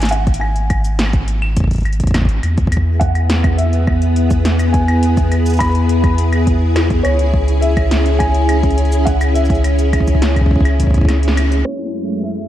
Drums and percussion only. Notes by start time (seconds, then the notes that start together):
0.02 snare, closed hi-hat
0.05 closed hi-hat
0.09 closed hi-hat
0.12 closed hi-hat
0.27 kick, closed hi-hat
0.34 closed hi-hat
0.41 claves
0.56 closed hi-hat
0.70 kick, closed hi-hat, claves
0.85 closed hi-hat, cabasa
0.99 snare, closed hi-hat
1.06 claves
1.13 kick, closed hi-hat
1.28 closed hi-hat
1.42 claves
1.57 kick, closed hi-hat
1.60 kick
1.64 kick
1.68 kick, closed hi-hat
1.71 kick, closed hi-hat
1.75 kick, closed hi-hat
1.78 kick, closed hi-hat
1.81 kick, closed hi-hat
1.83 closed hi-hat
1.85 closed hi-hat, claves
1.93 closed hi-hat
2.00 kick, closed hi-hat
2.04 kick, closed hi-hat
2.07 kick
2.11 kick, snare, closed hi-hat, claves
2.14 kick
2.18 kick
2.22 kick
2.25 kick, closed hi-hat
2.43 closed hi-hat, claves
2.58 kick, closed hi-hat
2.67 kick
2.72 closed hi-hat, claves
2.77 kick
3.01 kick, closed hi-hat
3.15 closed hi-hat, claves
3.30 snare, closed hi-hat
3.44 kick, closed hi-hat, claves
3.58 closed hi-hat
3.73 closed hi-hat
3.87 kick, claves
4.02 closed hi-hat
4.16 closed hi-hat
4.31 kick, closed hi-hat, cabasa
4.45 snare, closed hi-hat
4.59 closed hi-hat, cabasa, claves
4.74 kick, closed hi-hat
4.88 closed hi-hat, claves
5.03 closed hi-hat
5.17 kick, closed hi-hat, cabasa
5.32 closed hi-hat, claves
5.46 closed hi-hat, cabasa
5.50 cabasa
5.53 cabasa
5.57 closed hi-hat, cabasa
5.60 kick, cabasa, claves
5.64 cabasa
5.68 cabasa
5.71 closed hi-hat, cabasa
5.89 closed hi-hat
6.04 kick, closed hi-hat, claves
6.18 closed hi-hat
6.33 closed hi-hat, claves
6.47 kick, closed hi-hat
6.76 snare, closed hi-hat, claves
6.78 claves
6.83 claves
6.85 claves
6.90 kick, closed hi-hat
7.05 closed hi-hat, claves
7.19 closed hi-hat
7.34 kick
7.48 closed hi-hat
7.62 closed hi-hat
7.77 kick, closed hi-hat, claves
7.91 snare, closed hi-hat
8.06 closed hi-hat
8.20 kick, closed hi-hat, claves
8.34 closed hi-hat
8.49 closed hi-hat, claves
8.63 kick, closed hi-hat
8.71 closed hi-hat
8.78 closed hi-hat
8.85 closed hi-hat
8.92 closed hi-hat, cabasa
9.07 kick, closed hi-hat
9.21 closed hi-hat, cabasa, claves
9.36 closed hi-hat, cabasa
9.45 cabasa
9.50 kick, closed hi-hat
9.55 cabasa
9.64 closed hi-hat, claves
9.79 closed hi-hat, cabasa
9.93 kick, closed hi-hat, claves
10.00 kick
10.08 kick, closed hi-hat, cabasa
10.15 kick
10.22 snare, closed hi-hat
10.36 kick, closed hi-hat, claves
10.41 kick
10.46 kick
10.51 kick
10.56 kick
10.61 kick
10.65 closed hi-hat, claves
10.80 kick, closed hi-hat
10.83 kick
10.87 kick
10.91 kick
10.94 kick, closed hi-hat
10.98 kick
11.01 kick
11.05 kick, snare, closed hi-hat, claves
11.23 closed hi-hat
11.28 snare
11.37 closed hi-hat, claves
11.52 closed hi-hat
11.66 claves
11.95 claves
12.38 claves